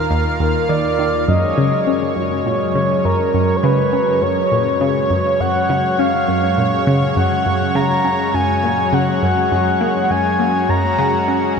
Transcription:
Already playing: analog synth pad D#2 D#3 A#3 F4 F5, soft synth lead A#4
0.11 synth arpeggio sound D#2
0.40 synth arpeggio sound D#2
0.69 synth arpeggio sound D#3, soft synth lead D5
0.99 synth arpeggio sound D#3
1.28 synth arpeggio sound F#2, analog synth pad F#2 F#3 G#3 C#4 C#5, soft synth lead D#5
1.58 synth arpeggio sound C#3
1.87 synth arpeggio sound C#4
2.16 synth arpeggio sound F#2
2.46 synth arpeggio sound A#2, soft synth lead C#5
2.75 synth arpeggio sound C#3
3.05 synth arpeggio sound F#2, soft synth lead A#4
3.34 synth arpeggio sound F#2
3.57 soft synth lead C#5
3.63 synth arpeggio sound C#3, soft synth lead B4
3.93 synth arpeggio sound C#4
4.22 synth arpeggio sound F#2, soft synth lead C#5
4.52 synth arpeggio sound A#2
4.81 synth arpeggio sound C#3
5.10 synth arpeggio sound F#2
5.40 synth arpeggio sound F#2, soft synth lead F#5
5.70 synth arpeggio sound C#3
5.99 synth arpeggio sound C#4, soft synth lead F5
6.28 synth arpeggio sound F#2
6.58 synth arpeggio sound A#2
6.87 synth arpeggio sound C#3
7.16 synth arpeggio sound F#2, soft synth lead F#5
7.46 synth arpeggio sound F#2
7.75 synth arpeggio sound C#3, soft synth lead A#5
8.05 synth arpeggio sound C#4
8.34 synth arpeggio sound F#2, soft synth lead G#5
8.63 synth arpeggio sound A#2
8.93 synth arpeggio sound C#3, soft synth lead F#5
9.22 synth arpeggio sound F#2
9.52 synth arpeggio sound F#2
9.81 synth arpeggio sound A#3
10.10 synth arpeggio sound F#2, soft synth lead G#5
10.40 synth arpeggio sound A#3
10.69 synth arpeggio sound F#2, analog synth pad F#4, soft synth lead A#5
10.99 synth arpeggio sound C#3
11.28 synth arpeggio sound C#4

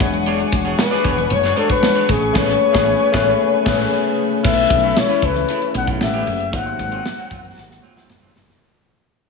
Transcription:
Already playing: tine electric piano E5, string section F#5 G#5
0.00 fretless electric bass E1, tine electric piano G#3 D4 F#4 C#5, string section D4 C#6, muted clean electric guitar stroke, kick, open hi-hat, low conga
0.13 muted clean electric guitar stroke, closed hi-hat
0.26 clean electric guitar D4 G#4 C#5, closed hi-hat, muted conga
0.39 muted clean electric guitar stroke, closed hi-hat
0.52 fretless electric bass E1, muted clean electric guitar stroke, kick, closed hi-hat, high conga
0.65 clean electric guitar D4 G#4 C#5, closed hi-hat
0.78 flugelhorn B4, muted clean electric guitar stroke, snare, muted conga
0.91 clean electric guitar D4 G#4 D5, snare, closed hi-hat, high conga
1.04 fretless electric bass E1, clean electric guitar D4 G#4 C#5, kick, closed hi-hat, muted conga, low conga
1.17 muted clean electric guitar stroke, closed hi-hat, low conga
1.30 fretless electric bass F#1, flugelhorn C#5, muted clean electric guitar stroke, closed hi-hat
1.43 clean electric guitar D4 G#4 C#5, snare, closed hi-hat
1.56 tine electric piano G#3 D4 F#4 C5, clean electric guitar D4 G#4 C#5, flugelhorn A4, closed hi-hat, high conga
1.64 tine electric piano C#5
1.70 flugelhorn B4, muted clean electric guitar stroke, kick, closed hi-hat
1.83 muted clean electric guitar stroke, snare, muted conga, high conga
1.95 clean electric guitar D4 G#4 C#5, closed hi-hat
2.08 fretless electric bass A1, tine electric piano A3 C#4 G#4 B4, flugelhorn G#4, string section B4 G#5, muted clean electric guitar stroke, kick, open hi-hat, low conga
2.21 muted clean electric guitar stroke, closed hi-hat
2.33 fretless electric bass A1, tine electric piano A3 C#4 G#4 B4, clean electric guitar B3 C#4 G#4, flugelhorn C#5, kick, snare, crash
2.72 fretless electric bass A1, tine electric piano A3 C#4 G#4 B4, clean electric guitar B3 C#4 G#4, kick, snare
3.12 fretless electric bass A1, tine electric piano A3 C#4 G#4 B4, clean electric guitar B3 C#4 G#4, kick, snare
3.64 fretless electric bass A1, tine electric piano A3 C#4 G#4 B4, clean electric guitar B3 C#4 G#4, kick, snare, crash
4.43 fretless electric bass B1, string section C#3 A3 E4, tine electric piano A3 C#4 E4 B4, clean electric guitar C#4 E4 A4, flugelhorn E5, kick, crash
4.57 muted clean electric guitar stroke, closed hi-hat
4.70 fretless electric bass B1, muted clean electric guitar stroke, kick, closed hi-hat, high conga
4.83 clean electric guitar C#4 E4 A4, closed hi-hat
4.96 flugelhorn C#5, muted clean electric guitar stroke, snare, muted conga
5.09 clean electric guitar C#4 E4 B4, closed hi-hat, high conga
5.22 fretless electric bass C#2, clean electric guitar C#4 E4 A4, flugelhorn B4, kick, closed hi-hat, muted conga, low conga
5.36 muted clean electric guitar stroke, closed hi-hat, low conga
5.48 clean electric guitar C#4 E4 A4, closed hi-hat
5.62 muted clean electric guitar stroke, closed hi-hat
5.74 fretless electric bass B1, flugelhorn F#5, muted clean electric guitar stroke, closed hi-hat, muted conga, high conga
5.87 clean electric guitar C#4 E4 A4, kick, closed hi-hat
6.00 fretless electric bass A1, tine electric piano A3 C#4 G4 A4, string section B3 G4, flugelhorn E5, muted clean electric guitar stroke, snare, high conga
6.08 tine electric piano B4
6.14 clean electric guitar B3 C#4 G4, closed hi-hat
6.27 fretless electric bass F#1, muted clean electric guitar stroke, open hi-hat, low conga
6.40 muted clean electric guitar stroke, closed hi-hat
6.52 fretless electric bass G#1, string section C3 F#3 A#3 F#4, clean electric guitar F#3 C4 F4, tine electric piano A#3 D#4 F#4 A#4, flugelhorn F#5, kick, closed hi-hat, muted conga
6.61 tine electric piano C5
6.67 muted clean electric guitar stroke, closed hi-hat
6.79 fretless electric bass G#1, muted clean electric guitar stroke, closed hi-hat, muted conga, high conga
6.92 clean electric guitar F#3 C4 F4, closed hi-hat
7.05 snare, muted conga
7.18 clean electric guitar F#3 C4 F#4, closed hi-hat, high conga
7.31 fretless electric bass F#1, clean electric guitar F#3 C4 F4, kick, closed hi-hat, muted conga, low conga
7.43 muted clean electric guitar stroke, closed hi-hat, low conga
7.56 fretless electric bass G#1, muted clean electric guitar stroke, snare, muted conga
7.70 muted clean electric guitar stroke, snare
7.82 clean electric guitar F#3 C4 F4, muted conga, high conga
7.95 clean electric guitar F#3 C4 F4, snare
8.08 fretless electric bass F#1, muted clean electric guitar stroke, snare, muted conga, high conga
8.21 clean electric guitar F#3 C4 F4
8.34 fretless electric bass F#1, muted clean electric guitar stroke, snare, muted conga, low conga
8.47 muted clean electric guitar stroke, snare

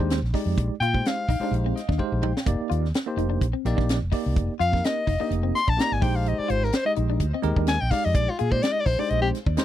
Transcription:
Already playing: tine electric piano G#3 D#4 G4 C5
0.00 fretless electric bass D#2, clean electric guitar D4
0.10 snare, closed hi-hat
0.22 fretless electric bass A#1, snare
0.34 tine electric piano G#3 D#4 G4 D5, clean electric guitar D#4, kick, snare, open hi-hat
0.46 fretless electric bass F2
0.57 fretless electric bass A#1, kick, closed hi-hat
0.80 fretless electric bass A#2, clean electric guitar F4, soprano saxophone G5, closed hi-hat
0.93 tine electric piano G#3 D#4 G4 C5, kick
1.05 soprano saxophone F5, snare, closed hi-hat
1.29 fretless electric bass A#1, clean electric guitar D#4, kick, open hi-hat
1.40 tine electric piano G#3 D#4 G4 C5, clean electric guitar D4, muted fretless electric bass stroke
1.51 fretless electric bass A#1, closed hi-hat
1.66 clean electric guitar C4
1.76 tine electric piano D#5, snare, closed hi-hat
1.89 fretless electric bass D#2, clean electric guitar D4, kick, snare
1.98 tine electric piano G#3 D#4 G4 C5 F5, kick
2.12 fretless electric bass A#1
2.22 clean electric guitar D#4, tine electric piano G5, mid tom
2.37 snare
2.46 fretless electric bass F1, tine electric piano A#3 D#4 G4 D5, kick, closed hi-hat
2.60 muted fretless electric bass stroke
2.70 fretless electric bass D#2, clean electric guitar F4, closed hi-hat
2.85 snare
2.94 snare, closed hi-hat
3.06 tine electric piano A#3 D#4 G4 C5
3.17 fretless electric bass F1, clean electric guitar D#4, closed hi-hat
3.30 clean electric guitar D4
3.41 fretless electric bass A#1, kick, closed hi-hat
3.53 clean electric guitar C4
3.65 fretless electric bass A#1, tine electric piano A#3 D#4 G4 D5, snare, closed hi-hat
3.77 fretless electric bass A#1, clean electric guitar D4, kick, snare
3.89 snare, closed hi-hat
4.02 fretless electric bass F1
4.12 tine electric piano A#3 D#4 G4 D5, clean electric guitar D#4, kick, open hi-hat
4.26 fretless electric bass C2
4.36 fretless electric bass F1, kick, closed hi-hat
4.59 fretless electric bass F2, clean electric guitar F4, soprano saxophone F5, closed hi-hat
4.72 tine electric piano A#3 D#4 G4 A#4, kick, snare
4.84 soprano saxophone D#5, snare, closed hi-hat
5.07 fretless electric bass F1, clean electric guitar D#4, kick, open hi-hat
5.20 tine electric piano A#3 D#4 G4 D#5, clean electric guitar D4
5.31 fretless electric bass F1, closed hi-hat
5.43 clean electric guitar C4
5.55 soprano saxophone C6, snare, closed hi-hat
5.67 fretless electric bass A#1, clean electric guitar D4, soprano saxophone A5, kick
5.77 tine electric piano A#3 D#4 G4 D5, soprano saxophone A#5, snare, closed hi-hat
5.92 fretless electric bass G#1, soprano saxophone G#5, snare
6.02 fretless electric bass A#1, tine electric piano G#3 D#4 G4 C5, clean electric guitar D#4, soprano saxophone G5, kick, open hi-hat
6.16 soprano saxophone F5
6.26 soprano saxophone D#5, closed hi-hat
6.39 soprano saxophone D5, muted fretless electric bass stroke
6.48 fretless electric bass G#1, clean electric guitar F4, soprano saxophone C5, closed hi-hat
6.64 soprano saxophone A#4, snare
6.73 soprano saxophone C5, snare, closed hi-hat
6.85 tine electric piano G#3 D#4 G4 D#5, soprano saxophone D#5
6.96 fretless electric bass A#1, clean electric guitar D#4, closed hi-hat
7.10 clean electric guitar D4
7.20 fretless electric bass D2, kick, closed hi-hat
7.34 clean electric guitar C4
7.43 fretless electric bass D#2, tine electric piano G#3 D#4 G4 A#4, closed hi-hat
7.56 fretless electric bass D#2, clean electric guitar D4, kick
7.67 soprano saxophone G#5, snare, closed hi-hat
7.81 fretless electric bass A#1, soprano saxophone G5
7.91 tine electric piano G#3 D#4 G4 D5, clean electric guitar D#4, soprano saxophone F5, kick, snare, open hi-hat
8.05 fretless electric bass F2, soprano saxophone D#5
8.15 fretless electric bass A#1, soprano saxophone D5, kick, closed hi-hat
8.30 soprano saxophone F4
8.39 fretless electric bass A#2, clean electric guitar F4, soprano saxophone G#4, closed hi-hat
8.51 tine electric piano G#3 D#4 G4 D5, soprano saxophone C5, kick
8.63 soprano saxophone D5, snare, closed hi-hat
8.72 soprano saxophone D#5
8.80 soprano saxophone D5
8.86 fretless electric bass A#1, clean electric guitar D#4, soprano saxophone C5, kick, open hi-hat
8.98 tine electric piano G#3 D#4 G4 C5, clean electric guitar D4, soprano saxophone D5
9.10 fretless electric bass A#1, soprano saxophone D#5, closed hi-hat
9.22 clean electric guitar C4, soprano saxophone G4
9.35 snare, closed hi-hat
9.46 fretless electric bass D#2, clean electric guitar D4, kick
9.57 tine electric piano G#3 D#4 G4 C5, snare, closed hi-hat

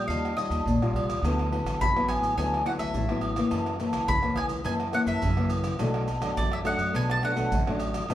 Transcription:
Already playing: nylon-string guitar G3 C#4 F4
0.08 upright bass D#2, nylon-string guitar D#3, mandolin F5, pandeiro, low agogo, maracas, surdo
0.25 pandeiro, tamborim, maracas
0.37 nylon-string guitar G3 C#4 F4, mandolin D#5, pandeiro, tamborim, maracas
0.50 upright bass D#2, pandeiro, low agogo, maracas, surdo
0.66 upright bass D#2, nylon-string guitar A#2, pandeiro, maracas, surdo
0.80 upright bass A#1, nylon-string guitar G3 C#4 F4, pandeiro, tamborim, maracas
0.94 upright bass C2, pandeiro, high agogo
1.07 upright bass C#2, pandeiro, tamborim, high agogo, maracas, surdo
1.22 upright bass D2, nylon-string guitar D3 F#3 B3 E4, pandeiro, tamborim, low agogo, maracas, surdo
1.39 pandeiro, tamborim, maracas
1.52 nylon-string guitar F#3 B3 E4, pandeiro, low agogo
1.64 upright bass A1, pandeiro, tamborim, low agogo, maracas, surdo
1.79 upright bass A1, nylon-string guitar A2, mandolin B5, pandeiro, maracas, surdo
1.96 nylon-string guitar F#3 B3 E4, pandeiro, tamborim, maracas
2.09 mandolin G#5, pandeiro, tamborim, high agogo, maracas, surdo
2.21 upright bass A1, pandeiro, high agogo, maracas
2.37 upright bass D2, nylon-string guitar D3 F#3 B3 E4, mandolin G#5, pandeiro, low agogo, maracas, surdo
2.54 pandeiro, tamborim, maracas
2.65 nylon-string guitar F#3 B3 E4, mandolin F#5, pandeiro, tamborim
2.78 upright bass D2, mandolin E5, pandeiro, low agogo, maracas, surdo
2.94 upright bass A1, nylon-string guitar A2, pandeiro, maracas, surdo
3.09 nylon-string guitar F#3 B3 E4, pandeiro, tamborim, maracas
3.21 pandeiro, high agogo
3.36 nylon-string guitar E3 A#3 C#4, pandeiro, tamborim, high agogo, maracas, surdo
3.51 upright bass F#2, nylon-string guitar F#2, pandeiro, tamborim, low agogo, maracas, surdo
3.66 pandeiro, tamborim, maracas
3.80 nylon-string guitar E3 A#3 C#4, pandeiro, low agogo, maracas
3.93 upright bass C#2, pandeiro, tamborim, low agogo, maracas, surdo
4.08 upright bass C#2, nylon-string guitar C#3, mandolin B5, pandeiro, maracas, surdo
4.23 nylon-string guitar E3 A#3 C#4, pandeiro, tamborim, maracas
4.36 mandolin G#5, pandeiro, tamborim, high agogo, surdo
4.49 upright bass C#2, pandeiro, high agogo, maracas
4.64 nylon-string guitar F#2 E3 A#3 C#4, upright bass F#2, mandolin G#5, pandeiro, low agogo, maracas, surdo
4.80 pandeiro, tamborim, maracas
4.92 nylon-string guitar E3 A#3 C#4, mandolin F#5, pandeiro, tamborim, maracas
5.06 upright bass F#2, mandolin E5, pandeiro, low agogo, maracas, surdo
5.22 upright bass F#2, nylon-string guitar C#3, pandeiro, maracas, surdo
5.37 nylon-string guitar E3 A#3 C#4, pandeiro, tamborim, maracas
5.50 pandeiro, high agogo, maracas
5.64 pandeiro, tamborim, high agogo, maracas, surdo
5.79 upright bass B1, nylon-string guitar B2 F#3 A3 D4, pandeiro, tamborim, low agogo, maracas, surdo
5.94 pandeiro, tamborim, maracas
6.08 pandeiro, low agogo, maracas, surdo
6.20 upright bass F#2, nylon-string guitar F#3 A3 D4, pandeiro, tamborim, low agogo, maracas, surdo
6.36 nylon-string guitar F#2, upright bass F#2, mandolin D5, pandeiro, maracas, surdo
6.52 mandolin E5, pandeiro, tamborim, maracas
6.64 nylon-string guitar F#3 A3 D4, mandolin F#5, pandeiro, tamborim, high agogo, maracas, surdo
6.78 upright bass F#2, pandeiro, high agogo, maracas
6.94 upright bass B1, nylon-string guitar B2, mandolin G#5, pandeiro, low agogo, maracas, surdo
7.10 mandolin A5, pandeiro, tamborim, maracas
7.22 nylon-string guitar F#3 A3 D4, mandolin F#5, pandeiro, tamborim
7.36 upright bass B1, nylon-string guitar F#3 A3 D4, pandeiro, low agogo, maracas, surdo
7.51 upright bass A1, nylon-string guitar F#2, pandeiro, maracas, surdo
7.67 nylon-string guitar F#3 A3 D4, pandeiro, tamborim, maracas
7.80 pandeiro, high agogo, maracas
7.94 pandeiro, tamborim, high agogo, maracas, surdo
8.08 upright bass G#1, nylon-string guitar G#2 F#3 B3 D4, pandeiro, tamborim, low agogo, maracas, surdo

